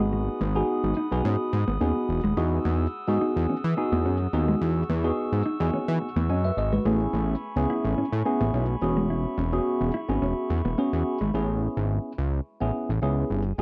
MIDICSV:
0, 0, Header, 1, 6, 480
1, 0, Start_track
1, 0, Tempo, 560748
1, 109, Time_signature, 4, 2, 24, 8
1, 11656, End_track
2, 0, Start_track
2, 0, Title_t, "Glass harmonica"
2, 0, Program_c, 0, 92
2, 0, Note_on_c, 0, 68, 74
2, 0, Note_on_c, 0, 78, 67
2, 0, Note_on_c, 0, 83, 65
2, 0, Note_on_c, 0, 87, 82
2, 1995, Note_off_c, 0, 83, 0
2, 2007, Note_off_c, 0, 87, 0
2, 2030, Note_on_c, 0, 87, 61
2, 2031, Note_on_c, 0, 88, 74
2, 3930, Note_off_c, 0, 87, 0
2, 3950, Note_on_c, 0, 85, 65
2, 5834, Note_off_c, 0, 78, 0
2, 5835, Note_off_c, 0, 68, 0
2, 5836, Note_off_c, 0, 88, 0
2, 5869, Note_on_c, 0, 57, 70
2, 5870, Note_on_c, 0, 80, 68
2, 5871, Note_on_c, 0, 83, 65
2, 7532, Note_off_c, 0, 57, 0
2, 7533, Note_off_c, 0, 80, 0
2, 7549, Note_on_c, 0, 76, 66
2, 7550, Note_on_c, 0, 68, 77
2, 9675, Note_off_c, 0, 85, 0
2, 9676, Note_off_c, 0, 83, 0
2, 9687, Note_off_c, 0, 76, 0
2, 9688, Note_off_c, 0, 68, 0
2, 11656, End_track
3, 0, Start_track
3, 0, Title_t, "Tine electric piano"
3, 0, Program_c, 1, 4
3, 0, Note_on_c, 1, 59, 91
3, 0, Note_on_c, 1, 63, 91
3, 0, Note_on_c, 1, 66, 86
3, 0, Note_on_c, 1, 68, 99
3, 346, Note_off_c, 1, 59, 0
3, 348, Note_off_c, 1, 63, 0
3, 349, Note_off_c, 1, 66, 0
3, 351, Note_off_c, 1, 68, 0
3, 472, Note_on_c, 1, 59, 95
3, 474, Note_on_c, 1, 63, 84
3, 477, Note_on_c, 1, 66, 88
3, 479, Note_on_c, 1, 68, 106
3, 798, Note_off_c, 1, 59, 0
3, 799, Note_off_c, 1, 63, 0
3, 801, Note_off_c, 1, 66, 0
3, 802, Note_off_c, 1, 68, 0
3, 952, Note_on_c, 1, 59, 84
3, 954, Note_on_c, 1, 63, 74
3, 956, Note_on_c, 1, 66, 76
3, 959, Note_on_c, 1, 68, 89
3, 1362, Note_off_c, 1, 59, 0
3, 1363, Note_off_c, 1, 63, 0
3, 1364, Note_off_c, 1, 66, 0
3, 1365, Note_off_c, 1, 68, 0
3, 1545, Note_on_c, 1, 59, 88
3, 1546, Note_on_c, 1, 63, 83
3, 1549, Note_on_c, 1, 66, 78
3, 1552, Note_on_c, 1, 68, 91
3, 1882, Note_off_c, 1, 59, 0
3, 1882, Note_off_c, 1, 63, 0
3, 1884, Note_off_c, 1, 66, 0
3, 1885, Note_off_c, 1, 68, 0
3, 2026, Note_on_c, 1, 59, 93
3, 2029, Note_on_c, 1, 63, 90
3, 2031, Note_on_c, 1, 66, 92
3, 2034, Note_on_c, 1, 68, 96
3, 2444, Note_off_c, 1, 59, 0
3, 2445, Note_off_c, 1, 63, 0
3, 2446, Note_off_c, 1, 66, 0
3, 2447, Note_off_c, 1, 68, 0
3, 2633, Note_on_c, 1, 59, 101
3, 2635, Note_on_c, 1, 63, 83
3, 2638, Note_on_c, 1, 66, 93
3, 2640, Note_on_c, 1, 68, 105
3, 3043, Note_off_c, 1, 59, 0
3, 3044, Note_off_c, 1, 63, 0
3, 3045, Note_off_c, 1, 66, 0
3, 3046, Note_off_c, 1, 68, 0
3, 3227, Note_on_c, 1, 59, 94
3, 3229, Note_on_c, 1, 63, 82
3, 3232, Note_on_c, 1, 66, 82
3, 3234, Note_on_c, 1, 68, 110
3, 3563, Note_off_c, 1, 59, 0
3, 3564, Note_off_c, 1, 63, 0
3, 3565, Note_off_c, 1, 66, 0
3, 3566, Note_off_c, 1, 68, 0
3, 3707, Note_on_c, 1, 59, 87
3, 3709, Note_on_c, 1, 63, 82
3, 3712, Note_on_c, 1, 66, 72
3, 3714, Note_on_c, 1, 68, 88
3, 4124, Note_off_c, 1, 59, 0
3, 4125, Note_off_c, 1, 63, 0
3, 4126, Note_off_c, 1, 66, 0
3, 4128, Note_off_c, 1, 68, 0
3, 4312, Note_on_c, 1, 59, 93
3, 4314, Note_on_c, 1, 63, 85
3, 4317, Note_on_c, 1, 66, 86
3, 4319, Note_on_c, 1, 68, 104
3, 4638, Note_off_c, 1, 59, 0
3, 4639, Note_off_c, 1, 63, 0
3, 4641, Note_off_c, 1, 66, 0
3, 4642, Note_off_c, 1, 68, 0
3, 4793, Note_on_c, 1, 59, 81
3, 4795, Note_on_c, 1, 63, 70
3, 4797, Note_on_c, 1, 66, 79
3, 4800, Note_on_c, 1, 68, 88
3, 5203, Note_off_c, 1, 59, 0
3, 5204, Note_off_c, 1, 63, 0
3, 5204, Note_off_c, 1, 66, 0
3, 5206, Note_off_c, 1, 68, 0
3, 5390, Note_on_c, 1, 80, 66
3, 5395, Note_on_c, 1, 75, 54
3, 5510, Note_off_c, 1, 80, 0
3, 5513, Note_off_c, 1, 75, 0
3, 5517, Note_on_c, 1, 76, 74
3, 5522, Note_on_c, 1, 71, 57
3, 5624, Note_off_c, 1, 76, 0
3, 5626, Note_off_c, 1, 71, 0
3, 5630, Note_on_c, 1, 75, 75
3, 5633, Note_on_c, 1, 68, 62
3, 5750, Note_off_c, 1, 75, 0
3, 5752, Note_off_c, 1, 68, 0
3, 5756, Note_on_c, 1, 71, 64
3, 5761, Note_on_c, 1, 66, 54
3, 5865, Note_on_c, 1, 59, 91
3, 5867, Note_on_c, 1, 61, 85
3, 5870, Note_on_c, 1, 64, 86
3, 5872, Note_on_c, 1, 68, 107
3, 5984, Note_off_c, 1, 71, 0
3, 5987, Note_off_c, 1, 66, 0
3, 6283, Note_off_c, 1, 59, 0
3, 6284, Note_off_c, 1, 61, 0
3, 6286, Note_off_c, 1, 64, 0
3, 6286, Note_off_c, 1, 68, 0
3, 6471, Note_on_c, 1, 59, 92
3, 6474, Note_on_c, 1, 61, 94
3, 6476, Note_on_c, 1, 64, 92
3, 6478, Note_on_c, 1, 68, 113
3, 6881, Note_off_c, 1, 59, 0
3, 6883, Note_off_c, 1, 61, 0
3, 6884, Note_off_c, 1, 64, 0
3, 6885, Note_off_c, 1, 68, 0
3, 7065, Note_on_c, 1, 59, 98
3, 7067, Note_on_c, 1, 61, 86
3, 7069, Note_on_c, 1, 64, 89
3, 7071, Note_on_c, 1, 68, 105
3, 7402, Note_off_c, 1, 59, 0
3, 7403, Note_off_c, 1, 61, 0
3, 7404, Note_off_c, 1, 64, 0
3, 7405, Note_off_c, 1, 68, 0
3, 7544, Note_on_c, 1, 59, 86
3, 7547, Note_on_c, 1, 61, 84
3, 7550, Note_on_c, 1, 66, 82
3, 7552, Note_on_c, 1, 68, 100
3, 8027, Note_off_c, 1, 59, 0
3, 8028, Note_off_c, 1, 61, 0
3, 8029, Note_off_c, 1, 66, 0
3, 8030, Note_off_c, 1, 68, 0
3, 8153, Note_on_c, 1, 59, 91
3, 8154, Note_on_c, 1, 61, 82
3, 8157, Note_on_c, 1, 66, 92
3, 8158, Note_on_c, 1, 68, 106
3, 8479, Note_off_c, 1, 59, 0
3, 8479, Note_off_c, 1, 61, 0
3, 8481, Note_off_c, 1, 66, 0
3, 8481, Note_off_c, 1, 68, 0
3, 8633, Note_on_c, 1, 59, 81
3, 8635, Note_on_c, 1, 61, 69
3, 8637, Note_on_c, 1, 66, 74
3, 8639, Note_on_c, 1, 68, 88
3, 9043, Note_off_c, 1, 59, 0
3, 9043, Note_off_c, 1, 61, 0
3, 9045, Note_off_c, 1, 66, 0
3, 9045, Note_off_c, 1, 68, 0
3, 9228, Note_on_c, 1, 59, 89
3, 9230, Note_on_c, 1, 61, 86
3, 9232, Note_on_c, 1, 66, 81
3, 9235, Note_on_c, 1, 68, 96
3, 9563, Note_off_c, 1, 59, 0
3, 9564, Note_off_c, 1, 61, 0
3, 9565, Note_off_c, 1, 66, 0
3, 9567, Note_off_c, 1, 68, 0
3, 9706, Note_on_c, 1, 59, 85
3, 9708, Note_on_c, 1, 61, 82
3, 9710, Note_on_c, 1, 64, 75
3, 9713, Note_on_c, 1, 68, 93
3, 10370, Note_off_c, 1, 59, 0
3, 10371, Note_off_c, 1, 61, 0
3, 10372, Note_off_c, 1, 64, 0
3, 10374, Note_off_c, 1, 68, 0
3, 10791, Note_on_c, 1, 59, 87
3, 10793, Note_on_c, 1, 61, 71
3, 10796, Note_on_c, 1, 64, 74
3, 10798, Note_on_c, 1, 68, 94
3, 11040, Note_off_c, 1, 59, 0
3, 11041, Note_off_c, 1, 61, 0
3, 11043, Note_off_c, 1, 64, 0
3, 11044, Note_off_c, 1, 68, 0
3, 11145, Note_on_c, 1, 59, 91
3, 11147, Note_on_c, 1, 61, 87
3, 11149, Note_on_c, 1, 64, 80
3, 11152, Note_on_c, 1, 68, 97
3, 11482, Note_off_c, 1, 59, 0
3, 11483, Note_off_c, 1, 61, 0
3, 11484, Note_off_c, 1, 64, 0
3, 11485, Note_off_c, 1, 68, 0
3, 11626, Note_on_c, 1, 59, 83
3, 11629, Note_on_c, 1, 63, 81
3, 11656, Note_off_c, 1, 59, 0
3, 11656, Note_off_c, 1, 63, 0
3, 11656, End_track
4, 0, Start_track
4, 0, Title_t, "Clean electric guitar"
4, 0, Program_c, 2, 27
4, 109, Note_on_c, 2, 56, 91
4, 192, Note_off_c, 2, 56, 0
4, 350, Note_on_c, 2, 59, 73
4, 432, Note_off_c, 2, 59, 0
4, 829, Note_on_c, 2, 63, 76
4, 911, Note_off_c, 2, 63, 0
4, 1070, Note_on_c, 2, 61, 82
4, 1152, Note_off_c, 2, 61, 0
4, 1435, Note_on_c, 2, 59, 79
4, 1509, Note_off_c, 2, 59, 0
4, 1549, Note_on_c, 2, 61, 93
4, 1632, Note_off_c, 2, 61, 0
4, 1915, Note_on_c, 2, 56, 79
4, 1989, Note_off_c, 2, 56, 0
4, 2029, Note_on_c, 2, 64, 92
4, 2112, Note_off_c, 2, 64, 0
4, 2270, Note_on_c, 2, 59, 72
4, 2352, Note_off_c, 2, 59, 0
4, 2750, Note_on_c, 2, 63, 81
4, 2833, Note_off_c, 2, 63, 0
4, 2992, Note_on_c, 2, 61, 80
4, 3073, Note_off_c, 2, 61, 0
4, 3359, Note_on_c, 2, 59, 83
4, 3431, Note_off_c, 2, 59, 0
4, 3472, Note_on_c, 2, 61, 99
4, 3554, Note_off_c, 2, 61, 0
4, 3838, Note_on_c, 2, 56, 81
4, 3911, Note_off_c, 2, 56, 0
4, 3950, Note_on_c, 2, 64, 85
4, 4032, Note_off_c, 2, 64, 0
4, 4191, Note_on_c, 2, 59, 75
4, 4273, Note_off_c, 2, 59, 0
4, 4670, Note_on_c, 2, 63, 82
4, 4753, Note_off_c, 2, 63, 0
4, 4910, Note_on_c, 2, 61, 83
4, 4993, Note_off_c, 2, 61, 0
4, 5277, Note_on_c, 2, 59, 87
4, 5350, Note_off_c, 2, 59, 0
4, 5389, Note_on_c, 2, 61, 106
4, 5472, Note_off_c, 2, 61, 0
4, 5758, Note_on_c, 2, 56, 78
4, 5831, Note_off_c, 2, 56, 0
4, 5870, Note_on_c, 2, 57, 96
4, 5952, Note_off_c, 2, 57, 0
4, 6110, Note_on_c, 2, 59, 74
4, 6192, Note_off_c, 2, 59, 0
4, 6591, Note_on_c, 2, 64, 78
4, 6673, Note_off_c, 2, 64, 0
4, 6831, Note_on_c, 2, 61, 83
4, 6913, Note_off_c, 2, 61, 0
4, 7198, Note_on_c, 2, 59, 81
4, 7271, Note_off_c, 2, 59, 0
4, 7312, Note_on_c, 2, 61, 97
4, 7394, Note_off_c, 2, 61, 0
4, 7678, Note_on_c, 2, 56, 73
4, 7750, Note_off_c, 2, 56, 0
4, 7791, Note_on_c, 2, 64, 90
4, 7873, Note_off_c, 2, 64, 0
4, 8031, Note_on_c, 2, 61, 77
4, 8113, Note_off_c, 2, 61, 0
4, 8509, Note_on_c, 2, 64, 85
4, 8591, Note_off_c, 2, 64, 0
4, 8749, Note_on_c, 2, 61, 86
4, 8832, Note_off_c, 2, 61, 0
4, 9117, Note_on_c, 2, 59, 76
4, 9190, Note_off_c, 2, 59, 0
4, 9229, Note_on_c, 2, 61, 94
4, 9311, Note_off_c, 2, 61, 0
4, 9595, Note_on_c, 2, 56, 75
4, 9669, Note_off_c, 2, 56, 0
4, 11656, End_track
5, 0, Start_track
5, 0, Title_t, "Analog synth bass"
5, 0, Program_c, 3, 38
5, 0, Note_on_c, 3, 32, 89
5, 248, Note_off_c, 3, 32, 0
5, 348, Note_on_c, 3, 32, 101
5, 538, Note_off_c, 3, 32, 0
5, 717, Note_on_c, 3, 32, 84
5, 806, Note_off_c, 3, 32, 0
5, 957, Note_on_c, 3, 35, 94
5, 1046, Note_off_c, 3, 35, 0
5, 1068, Note_on_c, 3, 44, 110
5, 1169, Note_off_c, 3, 44, 0
5, 1309, Note_on_c, 3, 44, 97
5, 1410, Note_off_c, 3, 44, 0
5, 1437, Note_on_c, 3, 32, 79
5, 1526, Note_off_c, 3, 32, 0
5, 1550, Note_on_c, 3, 39, 99
5, 1650, Note_off_c, 3, 39, 0
5, 1789, Note_on_c, 3, 28, 92
5, 1889, Note_off_c, 3, 28, 0
5, 1917, Note_on_c, 3, 27, 87
5, 2006, Note_off_c, 3, 27, 0
5, 2030, Note_on_c, 3, 40, 100
5, 2219, Note_off_c, 3, 40, 0
5, 2270, Note_on_c, 3, 40, 103
5, 2460, Note_off_c, 3, 40, 0
5, 2637, Note_on_c, 3, 44, 82
5, 2726, Note_off_c, 3, 44, 0
5, 2879, Note_on_c, 3, 40, 103
5, 2967, Note_off_c, 3, 40, 0
5, 2992, Note_on_c, 3, 52, 48
5, 3042, Note_off_c, 3, 52, 0
5, 3118, Note_on_c, 3, 52, 90
5, 3206, Note_off_c, 3, 52, 0
5, 3357, Note_on_c, 3, 40, 81
5, 3470, Note_on_c, 3, 42, 94
5, 3483, Note_off_c, 3, 40, 0
5, 3659, Note_off_c, 3, 42, 0
5, 3709, Note_on_c, 3, 39, 91
5, 3899, Note_off_c, 3, 39, 0
5, 3951, Note_on_c, 3, 40, 102
5, 4140, Note_off_c, 3, 40, 0
5, 4190, Note_on_c, 3, 40, 103
5, 4380, Note_off_c, 3, 40, 0
5, 4557, Note_on_c, 3, 44, 83
5, 4646, Note_off_c, 3, 44, 0
5, 4795, Note_on_c, 3, 40, 98
5, 4885, Note_off_c, 3, 40, 0
5, 4909, Note_on_c, 3, 52, 47
5, 4960, Note_off_c, 3, 52, 0
5, 5036, Note_on_c, 3, 52, 95
5, 5125, Note_off_c, 3, 52, 0
5, 5274, Note_on_c, 3, 40, 88
5, 5386, Note_on_c, 3, 42, 96
5, 5398, Note_off_c, 3, 40, 0
5, 5577, Note_off_c, 3, 42, 0
5, 5626, Note_on_c, 3, 32, 82
5, 5817, Note_off_c, 3, 32, 0
5, 5865, Note_on_c, 3, 33, 101
5, 6056, Note_off_c, 3, 33, 0
5, 6107, Note_on_c, 3, 33, 107
5, 6297, Note_off_c, 3, 33, 0
5, 6472, Note_on_c, 3, 37, 89
5, 6563, Note_off_c, 3, 37, 0
5, 6715, Note_on_c, 3, 33, 94
5, 6805, Note_off_c, 3, 33, 0
5, 6828, Note_on_c, 3, 45, 49
5, 6879, Note_off_c, 3, 45, 0
5, 6954, Note_on_c, 3, 45, 98
5, 7044, Note_off_c, 3, 45, 0
5, 7196, Note_on_c, 3, 33, 92
5, 7285, Note_off_c, 3, 33, 0
5, 7308, Note_on_c, 3, 35, 85
5, 7498, Note_off_c, 3, 35, 0
5, 7549, Note_on_c, 3, 28, 93
5, 7929, Note_off_c, 3, 28, 0
5, 8027, Note_on_c, 3, 28, 113
5, 8218, Note_off_c, 3, 28, 0
5, 8394, Note_on_c, 3, 28, 86
5, 8484, Note_off_c, 3, 28, 0
5, 8635, Note_on_c, 3, 32, 88
5, 8725, Note_off_c, 3, 32, 0
5, 8750, Note_on_c, 3, 28, 97
5, 8850, Note_off_c, 3, 28, 0
5, 8989, Note_on_c, 3, 40, 93
5, 9089, Note_off_c, 3, 40, 0
5, 9115, Note_on_c, 3, 28, 100
5, 9204, Note_off_c, 3, 28, 0
5, 9356, Note_on_c, 3, 40, 99
5, 9445, Note_off_c, 3, 40, 0
5, 9596, Note_on_c, 3, 32, 85
5, 9685, Note_off_c, 3, 32, 0
5, 9708, Note_on_c, 3, 33, 102
5, 9999, Note_off_c, 3, 33, 0
5, 10076, Note_on_c, 3, 32, 94
5, 10266, Note_off_c, 3, 32, 0
5, 10429, Note_on_c, 3, 37, 90
5, 10619, Note_off_c, 3, 37, 0
5, 10796, Note_on_c, 3, 33, 85
5, 10885, Note_off_c, 3, 33, 0
5, 11037, Note_on_c, 3, 33, 89
5, 11126, Note_off_c, 3, 33, 0
5, 11148, Note_on_c, 3, 37, 86
5, 11338, Note_off_c, 3, 37, 0
5, 11389, Note_on_c, 3, 31, 92
5, 11579, Note_off_c, 3, 31, 0
5, 11627, Note_on_c, 3, 32, 105
5, 11656, Note_off_c, 3, 32, 0
5, 11656, End_track
6, 0, Start_track
6, 0, Title_t, "Muted clean electric guitar strokes"
6, 237, Note_on_c, 9, 29, 43
6, 322, Note_off_c, 9, 29, 0
6, 1309, Note_on_c, 9, 29, 47
6, 1395, Note_off_c, 9, 29, 0
6, 1674, Note_on_c, 9, 29, 42
6, 1760, Note_off_c, 9, 29, 0
6, 2157, Note_on_c, 9, 29, 45
6, 2243, Note_off_c, 9, 29, 0
6, 3231, Note_on_c, 9, 29, 46
6, 3316, Note_off_c, 9, 29, 0
6, 3598, Note_on_c, 9, 29, 44
6, 3684, Note_off_c, 9, 29, 0
6, 4079, Note_on_c, 9, 29, 46
6, 4165, Note_off_c, 9, 29, 0
6, 5150, Note_on_c, 9, 29, 48
6, 5235, Note_off_c, 9, 29, 0
6, 5518, Note_on_c, 9, 29, 44
6, 5604, Note_off_c, 9, 29, 0
6, 5999, Note_on_c, 9, 29, 45
6, 6085, Note_off_c, 9, 29, 0
6, 7071, Note_on_c, 9, 29, 47
6, 7157, Note_off_c, 9, 29, 0
6, 7438, Note_on_c, 9, 29, 46
6, 7524, Note_off_c, 9, 29, 0
6, 7919, Note_on_c, 9, 29, 45
6, 8005, Note_off_c, 9, 29, 0
6, 8990, Note_on_c, 9, 29, 45
6, 9075, Note_off_c, 9, 29, 0
6, 9357, Note_on_c, 9, 29, 45
6, 9443, Note_off_c, 9, 29, 0
6, 11656, End_track
0, 0, End_of_file